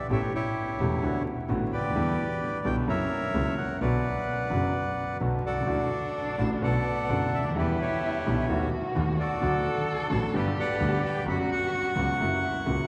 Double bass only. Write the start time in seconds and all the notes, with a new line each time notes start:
0.10 A1
0.80 E1
1.03 D2
1.49 A1
1.73 D2
1.95 E2
2.65 B1
2.87 F#1
3.34 C#2
3.81 B1
4.50 F#1
5.20 B1
5.44 C2
5.67 D2
6.39 A1
6.62 B1
7.09 F#1
7.33 D2
7.56 E2
8.26 B1
8.50 D#2
8.96 D#2
9.42 D2
10.11 A1
10.34 G1
10.80 D2
11.26 F#1
11.96 C#2
12.19 F#1
12.67 C#2